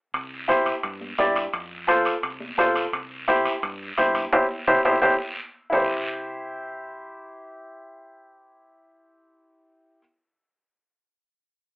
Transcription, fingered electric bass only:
0, 0, Header, 1, 2, 480
1, 0, Start_track
1, 0, Key_signature, 0, "major"
1, 0, Tempo, 349650
1, 187, Time_signature, 4, 2, 24, 8
1, 16133, End_track
2, 0, Start_track
2, 0, Title_t, "Fingered electric bass"
2, 0, Program_c, 0, 33
2, 185, Note_on_c, 0, 36, 86
2, 954, Note_off_c, 0, 36, 0
2, 1154, Note_on_c, 0, 43, 89
2, 1536, Note_off_c, 0, 43, 0
2, 1627, Note_on_c, 0, 43, 89
2, 2012, Note_off_c, 0, 43, 0
2, 2109, Note_on_c, 0, 41, 91
2, 2877, Note_off_c, 0, 41, 0
2, 3064, Note_on_c, 0, 36, 91
2, 3449, Note_off_c, 0, 36, 0
2, 3542, Note_on_c, 0, 36, 90
2, 3928, Note_off_c, 0, 36, 0
2, 4016, Note_on_c, 0, 36, 83
2, 4788, Note_off_c, 0, 36, 0
2, 4982, Note_on_c, 0, 43, 92
2, 5367, Note_off_c, 0, 43, 0
2, 5466, Note_on_c, 0, 43, 90
2, 5849, Note_off_c, 0, 43, 0
2, 5941, Note_on_c, 0, 36, 84
2, 6121, Note_off_c, 0, 36, 0
2, 6423, Note_on_c, 0, 36, 81
2, 6602, Note_off_c, 0, 36, 0
2, 6658, Note_on_c, 0, 36, 82
2, 6839, Note_off_c, 0, 36, 0
2, 6905, Note_on_c, 0, 36, 79
2, 7083, Note_off_c, 0, 36, 0
2, 7859, Note_on_c, 0, 36, 77
2, 13707, Note_off_c, 0, 36, 0
2, 16133, End_track
0, 0, End_of_file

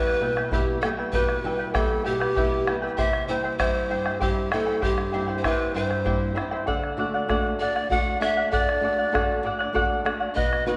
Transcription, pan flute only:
0, 0, Header, 1, 2, 480
1, 0, Start_track
1, 0, Tempo, 615385
1, 886, Time_signature, 6, 3, 24, 8
1, 8400, End_track
2, 0, Start_track
2, 0, Title_t, "Pan flute"
2, 0, Program_c, 0, 75
2, 0, Note_on_c, 0, 71, 90
2, 407, Note_off_c, 0, 71, 0
2, 413, Note_on_c, 0, 67, 64
2, 628, Note_off_c, 0, 67, 0
2, 632, Note_on_c, 0, 69, 70
2, 688, Note_off_c, 0, 69, 0
2, 879, Note_on_c, 0, 71, 78
2, 1332, Note_off_c, 0, 71, 0
2, 1361, Note_on_c, 0, 69, 73
2, 1602, Note_on_c, 0, 67, 82
2, 1614, Note_off_c, 0, 69, 0
2, 2145, Note_off_c, 0, 67, 0
2, 2322, Note_on_c, 0, 76, 84
2, 2548, Note_off_c, 0, 76, 0
2, 2560, Note_on_c, 0, 72, 75
2, 2787, Note_off_c, 0, 72, 0
2, 2797, Note_on_c, 0, 72, 78
2, 3286, Note_on_c, 0, 67, 70
2, 3298, Note_off_c, 0, 72, 0
2, 3526, Note_off_c, 0, 67, 0
2, 3530, Note_on_c, 0, 69, 77
2, 3775, Note_on_c, 0, 67, 68
2, 3787, Note_off_c, 0, 69, 0
2, 4192, Note_on_c, 0, 72, 55
2, 4204, Note_off_c, 0, 67, 0
2, 4249, Note_on_c, 0, 71, 76
2, 4260, Note_off_c, 0, 72, 0
2, 4482, Note_off_c, 0, 71, 0
2, 4486, Note_on_c, 0, 72, 75
2, 4996, Note_off_c, 0, 72, 0
2, 5926, Note_on_c, 0, 74, 73
2, 6168, Note_on_c, 0, 78, 78
2, 6180, Note_off_c, 0, 74, 0
2, 6403, Note_on_c, 0, 76, 80
2, 6415, Note_off_c, 0, 78, 0
2, 6638, Note_off_c, 0, 76, 0
2, 6643, Note_on_c, 0, 74, 78
2, 7331, Note_off_c, 0, 74, 0
2, 8074, Note_on_c, 0, 75, 79
2, 8300, Note_off_c, 0, 75, 0
2, 8324, Note_on_c, 0, 71, 65
2, 8377, Note_off_c, 0, 71, 0
2, 8400, End_track
0, 0, End_of_file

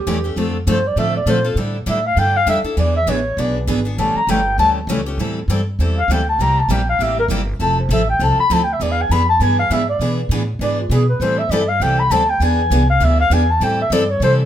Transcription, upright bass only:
0, 0, Header, 1, 3, 480
1, 0, Start_track
1, 0, Tempo, 301054
1, 592, Time_signature, 4, 2, 24, 8
1, 23045, End_track
2, 0, Start_track
2, 0, Title_t, "Upright bass"
2, 0, Program_c, 0, 32
2, 106, Note_on_c, 0, 40, 88
2, 569, Note_off_c, 0, 40, 0
2, 579, Note_on_c, 0, 41, 76
2, 1051, Note_off_c, 0, 41, 0
2, 1064, Note_on_c, 0, 43, 86
2, 1522, Note_off_c, 0, 43, 0
2, 1532, Note_on_c, 0, 45, 81
2, 1997, Note_off_c, 0, 45, 0
2, 2007, Note_on_c, 0, 46, 94
2, 2470, Note_off_c, 0, 46, 0
2, 2479, Note_on_c, 0, 45, 78
2, 2962, Note_off_c, 0, 45, 0
2, 2971, Note_on_c, 0, 45, 91
2, 3440, Note_off_c, 0, 45, 0
2, 3450, Note_on_c, 0, 43, 89
2, 3918, Note_off_c, 0, 43, 0
2, 3928, Note_on_c, 0, 41, 95
2, 4194, Note_off_c, 0, 41, 0
2, 4412, Note_on_c, 0, 40, 80
2, 4878, Note_off_c, 0, 40, 0
2, 4887, Note_on_c, 0, 33, 88
2, 5366, Note_off_c, 0, 33, 0
2, 5373, Note_on_c, 0, 35, 90
2, 5849, Note_off_c, 0, 35, 0
2, 5857, Note_on_c, 0, 32, 93
2, 6331, Note_off_c, 0, 32, 0
2, 6347, Note_on_c, 0, 33, 82
2, 6611, Note_off_c, 0, 33, 0
2, 6811, Note_on_c, 0, 31, 94
2, 7288, Note_off_c, 0, 31, 0
2, 7299, Note_on_c, 0, 38, 94
2, 7758, Note_off_c, 0, 38, 0
2, 7767, Note_on_c, 0, 37, 106
2, 8246, Note_off_c, 0, 37, 0
2, 8254, Note_on_c, 0, 45, 86
2, 8725, Note_off_c, 0, 45, 0
2, 8735, Note_on_c, 0, 43, 96
2, 9210, Note_off_c, 0, 43, 0
2, 9228, Note_on_c, 0, 40, 88
2, 9685, Note_off_c, 0, 40, 0
2, 9695, Note_on_c, 0, 38, 99
2, 10170, Note_off_c, 0, 38, 0
2, 10183, Note_on_c, 0, 36, 83
2, 10648, Note_off_c, 0, 36, 0
2, 10658, Note_on_c, 0, 34, 93
2, 11131, Note_off_c, 0, 34, 0
2, 11145, Note_on_c, 0, 33, 90
2, 11604, Note_off_c, 0, 33, 0
2, 11613, Note_on_c, 0, 31, 99
2, 12089, Note_off_c, 0, 31, 0
2, 12107, Note_on_c, 0, 29, 83
2, 12568, Note_off_c, 0, 29, 0
2, 12578, Note_on_c, 0, 33, 98
2, 13051, Note_off_c, 0, 33, 0
2, 13066, Note_on_c, 0, 36, 98
2, 13330, Note_off_c, 0, 36, 0
2, 13549, Note_on_c, 0, 38, 95
2, 14016, Note_off_c, 0, 38, 0
2, 14025, Note_on_c, 0, 40, 92
2, 14494, Note_off_c, 0, 40, 0
2, 14503, Note_on_c, 0, 41, 84
2, 14973, Note_off_c, 0, 41, 0
2, 14986, Note_on_c, 0, 43, 93
2, 15454, Note_off_c, 0, 43, 0
2, 15467, Note_on_c, 0, 44, 91
2, 15923, Note_off_c, 0, 44, 0
2, 15932, Note_on_c, 0, 47, 77
2, 16399, Note_off_c, 0, 47, 0
2, 16409, Note_on_c, 0, 45, 93
2, 16879, Note_off_c, 0, 45, 0
2, 16889, Note_on_c, 0, 44, 91
2, 17365, Note_off_c, 0, 44, 0
2, 17373, Note_on_c, 0, 47, 99
2, 17847, Note_off_c, 0, 47, 0
2, 17853, Note_on_c, 0, 45, 92
2, 18315, Note_off_c, 0, 45, 0
2, 18325, Note_on_c, 0, 43, 96
2, 18802, Note_off_c, 0, 43, 0
2, 18814, Note_on_c, 0, 36, 89
2, 19282, Note_off_c, 0, 36, 0
2, 19291, Note_on_c, 0, 38, 102
2, 19759, Note_off_c, 0, 38, 0
2, 19769, Note_on_c, 0, 40, 85
2, 20244, Note_off_c, 0, 40, 0
2, 20255, Note_on_c, 0, 36, 97
2, 20720, Note_off_c, 0, 36, 0
2, 20729, Note_on_c, 0, 38, 96
2, 21198, Note_off_c, 0, 38, 0
2, 21207, Note_on_c, 0, 40, 99
2, 21678, Note_off_c, 0, 40, 0
2, 21688, Note_on_c, 0, 45, 86
2, 22154, Note_off_c, 0, 45, 0
2, 22164, Note_on_c, 0, 43, 101
2, 22632, Note_off_c, 0, 43, 0
2, 22642, Note_on_c, 0, 48, 100
2, 23045, Note_off_c, 0, 48, 0
2, 23045, End_track
3, 0, Start_track
3, 0, Title_t, "Muted upright bass strokes"
3, 4204, Note_on_c, 9, 29, 39
3, 4363, Note_off_c, 9, 29, 0
3, 6621, Note_on_c, 9, 29, 41
3, 6780, Note_off_c, 9, 29, 0
3, 13351, Note_on_c, 9, 29, 47
3, 13510, Note_off_c, 9, 29, 0
3, 23045, End_track
0, 0, End_of_file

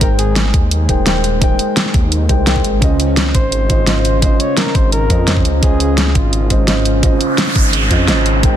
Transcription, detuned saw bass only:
0, 0, Header, 1, 2, 480
1, 0, Start_track
1, 0, Tempo, 350877
1, 16, Time_signature, 4, 2, 24, 8
1, 11720, End_track
2, 0, Start_track
2, 0, Title_t, "Detuned saw bass"
2, 0, Program_c, 0, 39
2, 16, Note_on_c, 0, 32, 101
2, 718, Note_off_c, 0, 32, 0
2, 736, Note_on_c, 0, 39, 105
2, 1198, Note_off_c, 0, 39, 0
2, 1216, Note_on_c, 0, 27, 98
2, 2158, Note_off_c, 0, 27, 0
2, 2657, Note_on_c, 0, 39, 109
2, 3118, Note_off_c, 0, 39, 0
2, 3136, Note_on_c, 0, 36, 110
2, 3598, Note_off_c, 0, 36, 0
2, 3618, Note_on_c, 0, 32, 93
2, 3834, Note_off_c, 0, 32, 0
2, 3857, Note_on_c, 0, 37, 106
2, 4558, Note_off_c, 0, 37, 0
2, 4577, Note_on_c, 0, 32, 104
2, 5038, Note_off_c, 0, 32, 0
2, 5057, Note_on_c, 0, 32, 101
2, 5998, Note_off_c, 0, 32, 0
2, 6497, Note_on_c, 0, 32, 103
2, 6958, Note_off_c, 0, 32, 0
2, 6977, Note_on_c, 0, 41, 109
2, 7438, Note_off_c, 0, 41, 0
2, 7456, Note_on_c, 0, 37, 93
2, 7673, Note_off_c, 0, 37, 0
2, 7697, Note_on_c, 0, 37, 102
2, 8398, Note_off_c, 0, 37, 0
2, 8418, Note_on_c, 0, 32, 105
2, 8878, Note_off_c, 0, 32, 0
2, 8898, Note_on_c, 0, 32, 100
2, 9838, Note_off_c, 0, 32, 0
2, 10337, Note_on_c, 0, 32, 104
2, 10798, Note_off_c, 0, 32, 0
2, 10817, Note_on_c, 0, 41, 105
2, 11057, Note_on_c, 0, 32, 85
2, 11078, Note_off_c, 0, 41, 0
2, 11518, Note_off_c, 0, 32, 0
2, 11537, Note_on_c, 0, 32, 105
2, 11720, Note_off_c, 0, 32, 0
2, 11720, End_track
0, 0, End_of_file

